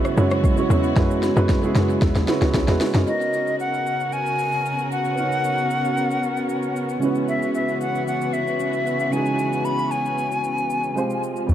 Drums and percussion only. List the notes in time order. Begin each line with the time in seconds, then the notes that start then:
0.05 cross-stick, shaker
0.17 shaker
0.31 cross-stick, shaker
0.44 kick, shaker
0.57 shaker
0.70 shaker
0.83 shaker
0.96 kick, snare, shaker
1.11 shaker
1.23 snare, shaker
1.36 shaker
1.49 kick, snare, shaker
1.63 shaker
1.75 snare, shaker
1.90 shaker
2.02 kick, snare, shaker
2.15 snare, shaker
2.28 snare, shaker
2.41 snare, shaker
2.54 kick, snare, shaker
2.68 snare, shaker
2.81 snare, open hi-hat, shaker
2.94 snare, shaker
3.07 shaker
3.21 shaker
3.33 shaker
3.47 shaker
3.60 shaker
3.74 shaker
3.87 shaker
4.00 shaker
4.12 shaker
4.26 shaker
4.39 shaker
4.52 shaker
4.66 shaker
4.78 shaker
4.92 shaker
5.05 shaker
5.18 shaker
5.32 shaker
5.44 shaker
5.58 shaker
5.70 shaker
5.85 shaker
5.97 shaker
6.11 shaker
6.23 shaker
6.37 shaker
6.49 shaker
6.62 shaker
6.76 shaker
6.89 shaker
7.02 shaker
7.15 shaker
7.28 shaker
7.42 shaker
7.55 shaker
7.68 shaker
7.81 shaker
7.95 shaker
8.08 shaker
8.21 shaker
8.33 shaker
8.47 shaker
8.60 shaker
8.73 shaker
8.87 shaker
9.00 shaker
9.13 shaker
9.26 shaker
9.39 shaker
9.53 shaker
9.65 shaker
9.79 shaker
9.91 shaker
10.05 shaker
10.18 shaker
10.32 shaker
10.44 shaker
10.58 shaker
10.70 shaker
10.83 shaker
10.97 shaker
11.10 shaker
11.23 shaker
11.36 shaker
11.49 shaker